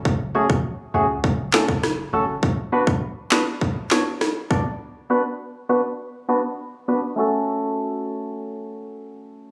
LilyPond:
<<
  \new Staff \with { instrumentName = "Synth stab" } { \time 4/4 \key fis \minor \tempo 4 = 101 r8 <a cis' fis' gis'>8 r8 <a cis' fis' gis'>8 r8 <a cis' fis' a'>8 r8 <a cis' fis' a'>8 | r8 <b d' fis' b'>8 r8 <b d' fis' b'>8 r8 <b d' fis' cis''>8 r8 <b d' fis' d''>8 | r8 <b d' fis' b'>8 r8 <b d' fis' b'>8 r8 <b d' fis' b'>8 r8 <b d' fis' b'>8 | <a cis' fis' a'>1 | }
  \new Staff \with { instrumentName = "808-style bass" } { \clef bass \time 4/4 \key fis \minor fis,,8. a,,16 r8 cis,8 fis,,8. fis,,8. fis,,8 | r1 | r1 | r1 | }
  \new DrumStaff \with { instrumentName = "Drums" } \drummode { \time 4/4 bd8. bd16 r4 bd8 <hc sn>16 bd16 <ss sn>4 | bd8. bd16 r8 <hc sn>8 bd8 <hc sn>8 <ss sn>8 bd8 | r4 r4 r4 r4 | r4 r4 r4 r4 | }
>>